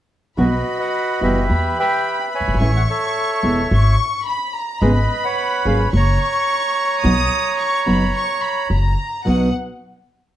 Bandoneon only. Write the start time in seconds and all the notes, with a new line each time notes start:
0.38 F#4 B4 D#5
0.79 B4 D#5 F#5
1.23 G4 B4 E5
1.79 B4 E5 G5
2.20 G5
2.35 C#5 E5 G#5
2.76 F#5
2.90 A4 C#5 E5
4.81 B4 D#5
5.24 B4 C#5 F#5
5.67 F5
5.96 C#5 A#5
9.29 D#6